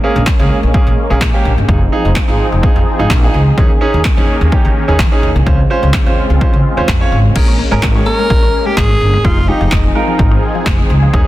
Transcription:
Already playing: supersaw synth G#3 A#3 C#4
0.04 grand piano A#3 C#4 G#4
0.16 upright bass A#1
0.26 kick, snare, clap
0.39 upright bass C#2, grand piano A#3 C#4 G#4
0.63 upright bass A#1
0.74 grand piano A#3 C#4 G#4, muted upright bass stroke, kick
0.87 upright bass A#2
1.10 upright bass A#1, grand piano A#3 C#4 G#4
1.21 upright bass A#2, kick, snare, clap
1.34 grand piano A#3 C#4 G4
1.45 upright bass A#1
1.58 upright bass G1
1.68 upright bass F1, supersaw synth F3 C4 D#4 G#4, grand piano D#4 F4 G#4, kick
1.92 grand piano D#4 F4 G#4
2.05 upright bass F1
2.15 kick, snare, clap
2.28 upright bass G#1, grand piano D#4 F4 G#4
2.52 upright bass F1
2.63 grand piano D#4 F4 G#4, kick
2.76 upright bass F2
2.99 upright bass G#1, grand piano D#4 F4 G#4
3.10 upright bass A#1, kick, snare, clap
3.23 grand piano D#4 F4 G#4
3.34 upright bass C#2
3.57 upright bass D#2, supersaw synth D#3 A#3 C#4, grand piano C#4 D#4 G#4, kick
3.81 grand piano C#4 D#4 G#4
3.94 upright bass D#2
4.04 kick, snare, clap
4.17 upright bass F2, grand piano C#4 D#4 G#4
4.41 upright bass D#2
4.52 grand piano C#4 D#4 G4, kick
4.65 upright bass D#3
4.88 upright bass D#2, grand piano C#4 D#4 G#4
4.99 upright bass D#3, kick, snare, clap
5.12 grand piano C#4 D#4 G#4
5.23 upright bass D#2
5.36 upright bass C2
5.46 upright bass C#2, supersaw synth C#3 G#3 C4 F4, grand piano C#4 F4 C5, kick
5.70 grand piano C#4 F4 C5
5.83 upright bass C#2
5.93 kick, snare, clap
6.06 upright bass D#2, grand piano C#4 F4 C5
6.30 upright bass C#2
6.41 grand piano C#4 F4 C5, kick
6.53 upright bass C#3
6.77 upright bass D#2, grand piano C#4 F4 C5
6.88 upright bass F2, kick, snare, clap
7.01 grand piano C#4 F4 C#5
7.12 upright bass G#1
7.35 upright bass A#1, supersaw synth G#3 A#3 C#4, grand piano C#4 G#4 A#4, synth arpeggio sound G#4, kick, crash
7.48 synth arpeggio sound C#4
7.59 synth arpeggio sound A#3
7.71 upright bass G#1, synth arpeggio sound G#3, grand piano C#4 G#4 A#4
7.82 upright bass G#1, synth arpeggio sound G#4, kick, snare, clap
7.95 grand piano C#4 G#4 C#5, synth arpeggio sound C#4
8.06 synth arpeggio sound A#3, alto saxophone A#4
8.19 synth arpeggio sound G#3
8.30 upright bass A#1, synth arpeggio sound G#4, kick
8.43 synth arpeggio sound C#4
8.66 synth arpeggio sound G#3, alto saxophone G4
8.77 upright bass G#1, alto saxophone G#4, kick, snare, clap
8.90 synth arpeggio sound C#4
9.01 upright bass G1
9.14 synth arpeggio sound G#3
9.24 upright bass F1, supersaw synth F3 C4 D#4 G#4, grand piano D#4 F4 G#4, synth arpeggio sound F4, alto saxophone F4, kick
9.37 synth arpeggio sound D#4
9.48 synth arpeggio sound G#3, grand piano D#4 F4 G4, alto saxophone D#4
9.61 upright bass F1, synth arpeggio sound F3
9.71 upright bass F1, synth arpeggio sound F4, kick, snare, clap
9.84 synth arpeggio sound D#4
9.95 synth arpeggio sound G#3, grand piano D#4 F4 A#4
10.08 synth arpeggio sound F3
10.19 upright bass G#1, synth arpeggio sound F4, kick
10.31 synth arpeggio sound D#4
10.55 synth arpeggio sound F3
10.66 upright bass F1, kick, snare, clap
10.79 synth arpeggio sound D#4
10.90 upright bass C#2
11.03 synth arpeggio sound F3
11.13 upright bass D#2, supersaw synth D#3 A#3 C#4, grand piano C#4 D#4 G#4, synth arpeggio sound D#4, kick

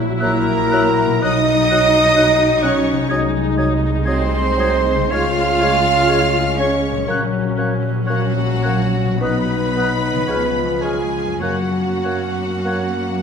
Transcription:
Already playing: double bass section A#1, harp A#2 F#3 E4 F#4, french horn section F#3 E4, viola section F#3 E4
0.20 french horn section F#3 E4, bassoon F#3, cello section A#3, clarinet A#4, trumpet section A#4, violin section A#4 A#5, oboe E5, flute F#6
0.71 bassoon F#3, oboe E5, flute F#6
1.06 harp B2
1.10 harp F#3
1.14 harp D#4
1.19 french horn section F#3, harp F#4, clarinet D#5, trumpet section D#5, flute F#6
1.23 double bass section B1, viola section F#3 D#4, bassoon F#3, french horn section D#4, cello section D#4, oboe D#5, violin section D#5 D#6
1.70 bassoon F#3, oboe D#5, flute F#6
2.16 bassoon F#3, oboe D#5, flute F#6
2.62 bassoon F#3, cello section C#4, clarinet C#5, trumpet section C#5, violin section C#5 C#6, oboe D#5, flute F#6
2.91 harp C3
2.96 harp F#3
3.00 harp D#4
3.05 french horn section G#3 D#4, harp G#4
3.09 double bass section C2, bassoon F#3, viola section G#3, oboe D#5, flute G#6
3.57 bassoon F#3, oboe D#5, flute G#6
4.05 bassoon F#3, french horn section G#3 D#4, cello section C4, trumpet section C5, clarinet C5, violin section C5 C6, oboe D#5, flute G#6
4.58 bassoon F#3, oboe D#5, flute G#6
4.94 harp C#3
4.98 harp G#3
5.03 harp C#4
5.07 french horn section G#3, harp C#5, oboe C#5, violin section F6, flute G#6
5.12 double bass section C#2, bassoon G#3, viola section C#4, french horn section C#4, cello section F4, clarinet F5, trumpet section F5, violin section F5
5.60 bassoon G#3, oboe C#5, flute G#6
6.08 bassoon G#3, oboe C#5, flute G#6
6.58 bassoon G#3, cello section C#4, trumpet section C#5, clarinet C#5, violin section C#5 C#6, oboe C#5, flute G#6
6.90 harp A#2
6.95 harp F#3
7.00 harp C#4
7.04 double bass section A#1, viola section F#3, french horn section C#4, harp C#5, oboe C#5
7.08 french horn section F#3, bassoon A#3, flute F#6
7.57 bassoon A#3, oboe C#5, flute F#6
8.05 french horn section F#3 C#4, cello section F#3, trumpet section F#4, clarinet F#4, violin section F#4 F#5, oboe C#5, flute F#6
8.10 bassoon A#3
8.62 bassoon A#3, oboe C#5, flute F#6
9.04 harp B2
9.08 harp F#3
9.13 harp D#4
9.18 double bass section B1, french horn section F#3 D#4, bassoon B3, viola section D#4, harp B4, clarinet B4, trumpet section B4
9.22 cello section B3, violin section B4 B5, oboe D#5, flute F#6
9.77 bassoon B3, oboe D#5, flute F#6
10.11 harp C#3
10.15 harp F3
10.20 harp C#4
10.24 viola section F3 C#4, harp G#4, oboe C#5
10.28 double bass section C#2, bassoon G#3, french horn section G#3 F4, flute F6
10.81 cello section G#3, bassoon G#3, violin section G#4 G#5, trumpet section G#4, clarinet G#4, oboe C#5, flute F6
11.25 harp F#2
11.29 harp F#3
11.34 harp C#4 A#4
11.40 double bass section F#2, cello section F#3, viola section A#3, french horn section A#3 F#4, bassoon A#3, clarinet F#4, trumpet section F#4, violin section F#4 F#5, oboe C#5, flute F#6
12.04 bassoon A#3, oboe C#5, flute F#6
12.64 bassoon A#3, french horn section A#3, oboe C#5, flute F#6

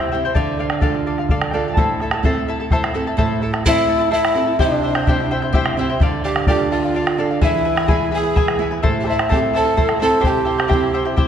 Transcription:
Already playing: nylon-string guitar C3, charango E4 G4 C5 E5 G5, harp C5 E5
0.00 bombo rim
0.12 nylon-string guitar C4 E4 G4, charango E4 C5 E5 G5
0.25 charango E4 C5 G5
0.35 nylon-string guitar D3, charango A4 D5 F5, bombo low
0.59 charango A4 D5 F5, harp F5
0.70 charango D5 F5, bombo rim
0.81 nylon-string guitar D4 F4 A4, charango A4 D5 F5, harp F5, bombo low
0.95 bombo rim
1.06 charango A4 D5 F5
1.18 charango D5 F5, bombo rim
1.29 charango A4 D5 F5, bombo low
1.42 bombo rim
1.51 nylon-string guitar D4 F4 A4, charango A4 D5 F5, harp G5
1.68 charango D5 F5
1.74 nylon-string guitar A2, charango C5, harp A5, bombo low
1.78 charango E4 A4 E5 A5
2.00 charango E4 A4 E5 A5, bombo rim
2.11 charango E4 A4 A5, bombo rim
2.23 nylon-string guitar C4 E4 A4, charango E4 A4 C5 E5 A5, bombo low
2.35 bombo rim
2.48 charango E4 A4 E5 A5
2.60 charango E4 A4 A5
2.71 charango E4 A4 C5 E5 A5, bombo rim, bombo low
2.84 bombo rim
2.94 nylon-string guitar C4 E4 A4, charango E4 A4 E5 A5
3.07 charango E4 A4 A5, bombo rim
3.17 nylon-string guitar A2, charango E4 A4 C5 E5 A5, bombo low
3.42 charango E4 A4 E5 A5
3.53 charango E4 A4 A5, bombo rim
3.65 nylon-string guitar C4 E4 A4, pan flute E4, charango E4 A4 C5 E5 A5, harp E5, bombo low
3.77 bombo rim
3.88 charango E4 A4 E5 A5
3.99 charango E4 A4 A5, bombo rim
4.11 charango E4 A4 C5 E5 A5, pan flute E4, harp E5
4.25 bombo rim
4.35 nylon-string guitar C4 E4 A4, charango E4 A4 E5 A5
4.47 charango E4 A4 A5
4.59 nylon-string guitar C3, pan flute D4, charango E4 G4 C5 E5 G5, harp D5, bombo low
4.83 charango E4 C5 E5 G5
4.95 charango E4 C5 G5, bombo rim
5.07 nylon-string guitar C4 E4 G4, charango E4 G4 C5 E5 G5, bombo low
5.20 bombo rim
5.31 charango E4 C5 E5 G5
5.42 charango E4 C5 G5, bombo rim
5.53 charango E4 G4 C5 E5 G5, nylon-string guitar C5, bombo low
5.66 bombo rim
5.77 nylon-string guitar C4 E4 G4 E5, charango E4 C5 E5 G5
5.90 charango E4 C5 G5
6.01 nylon-string guitar D3, charango A4 D5 F5, bombo low
6.24 pan flute G4, charango A4 D5 F5, harp G5
6.36 charango D5 F5, bombo rim
6.47 nylon-string guitar D4 F4 A4, pan flute G4, charango A4 D5 F5, harp G5, bombo low
6.59 bombo rim
6.71 pan flute F4, charango A4 D5 F5, harp F5
6.83 charango D5 F5, bombo rim
6.94 charango A4 D5 F5
7.07 bombo rim
7.18 nylon-string guitar D4 F4 A4, charango A4 D5 F5
7.30 charango D5 F5
7.41 nylon-string guitar E3, charango E4 G#4 B4 E5 G#5, pan flute E4, harp E5, bombo rim, bombo low
7.65 charango E4 B4 E5 G#5
7.76 charango E4 B4 G#5, bombo rim
7.88 nylon-string guitar B3 E4 G#4, charango E4 G#4 B4 E5 G#5, bombo low
8.11 charango E4 B4 E5 G#5, pan flute G#4, harp G#5
8.23 charango E4 B4 G#5
8.35 charango E4 G#4 B4 E5 G#5, bombo rim, bombo low
8.48 bombo rim
8.59 nylon-string guitar B3 E4 G#4, charango E4 B4 E5 G#5
8.71 charango E4 B4 G#5
8.83 nylon-string guitar A2, charango E4 A4 C5 E5 A5, bombo low
9.00 pan flute G4, harp G5
9.05 charango E4 C5 E5 A5
9.09 pan flute E4, harp E5
9.19 charango E4 C5 A5, bombo rim
9.29 nylon-string guitar C4 E4 A4, charango E4 A4 C5 E5 A5, pan flute G4, harp G5, bombo low
9.43 bombo rim
9.53 charango E4 C5 E5 A5, pan flute A4, harp A5
9.64 charango E4 C5 A5, bombo rim
9.76 charango E4 A4 C5 E5 A5, bombo low
9.89 bombo rim
9.99 nylon-string guitar C4 E4 A4, charango E4 C5 E5 A5, pan flute A4, harp A5
10.10 charango E4 C5 A5
10.20 charango E4 G4 C5 E5 G5, bombo low
10.25 nylon-string guitar C3, pan flute G4, harp G5
10.45 charango E4 C5 E5 G5
10.58 charango E4 C5 G5, bombo rim
10.68 charango E4 G4 C5 E5 G5, bombo low
10.72 nylon-string guitar C4 E4 G4
10.84 bombo rim
10.94 charango E4 C5 E5 G5
11.05 charango E4 C5 G5, bombo rim
11.16 charango E4 G4 C5 E5 G5, bombo low

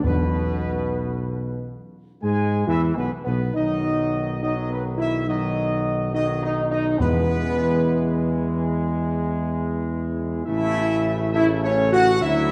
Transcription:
0.02 tuba B1, timpani E2, trombone section B2, french horn section B3, trumpet section B4
2.22 tuba G#2, trombone section G#3, french horn section G#4, trumpet section G#5
2.66 tuba E2, trombone section E3, french horn section E4, trumpet section E5
2.95 tuba B1, trombone section B2, french horn section B3, trumpet section B4
3.24 tuba B1, trombone section B2, french horn section B3, trumpet section B4
3.54 tuba B1, trombone section D#3 F#3, french horn section D#4, trumpet section D#5
4.41 trombone section D#3 F#3, french horn section D#4, trumpet section D#5
4.69 french horn section B3, trumpet section B4
4.97 french horn section E4, trumpet section E5
5.25 trombone section D#3 F#3, french horn section D#4, trumpet section D#5
6.12 trombone section D#3 F#3, french horn section D#4, trumpet section D#5
6.42 french horn section D#4, trumpet section D#5
6.70 french horn section D#4, trumpet section D#5
6.98 timpani E2, tuba E2, trombone section E3 G#3, french horn section B3, trumpet section B4
10.45 tuba A1, trombone section C#3 A3, french horn section E4, trumpet section E5
11.33 trombone section C#3 A3, french horn section E4, trumpet section E5
11.63 french horn section C#4, trumpet section C#5
11.92 french horn section F#4, trumpet section F#5
12.21 tuba D2, trombone section D3 F#3, french horn section E4, trumpet section E5

